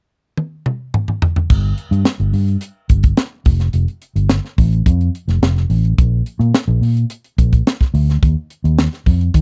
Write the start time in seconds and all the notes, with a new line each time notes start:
0.37 high tom
0.66 mid tom
0.94 mid tom
1.08 mid tom
1.22 floor tom
1.36 floor tom
1.50 G1, kick, crash
1.78 closed hi-hat
1.91 G2, closed hi-hat
2.05 snare, closed hi-hat
2.20 G1, closed hi-hat
2.33 G2, open hi-hat
2.48 closed hi-hat
2.61 closed hi-hat
2.89 G1, kick, closed hi-hat
3.03 kick, closed hi-hat
3.17 snare, closed hi-hat
3.45 F1, kick, open hi-hat
3.60 snare, closed hi-hat
3.73 F1, closed hi-hat
3.88 closed hi-hat
4.02 closed hi-hat
4.16 G1, closed hi-hat
4.29 snare, closed hi-hat
4.45 snare
4.58 A1, kick, open hi-hat
4.73 closed hi-hat
4.86 F2, kick, closed hi-hat
5.01 closed hi-hat
5.15 closed hi-hat
5.28 F1, snare, closed hi-hat
5.42 F1, snare, closed hi-hat
5.56 snare, closed hi-hat
5.70 A1, open hi-hat
5.85 closed hi-hat
5.98 A#1, kick, closed hi-hat
6.26 closed hi-hat
6.39 A#2, closed hi-hat
6.54 snare, closed hi-hat
6.68 A#1
6.81 A#2, open hi-hat
6.97 closed hi-hat
7.10 closed hi-hat
7.24 closed hi-hat
7.38 A#1, kick, closed hi-hat
7.53 kick, closed hi-hat
7.67 snare, closed hi-hat
7.81 kick, snare, closed hi-hat
7.94 D2, open hi-hat
8.10 snare, closed hi-hat
8.22 D#2, kick, closed hi-hat
8.50 closed hi-hat
8.64 D#2, closed hi-hat
8.79 snare, closed hi-hat
8.93 snare, closed hi-hat
9.06 F2, kick, open hi-hat
9.21 closed hi-hat
9.34 D#3, kick, closed hi-hat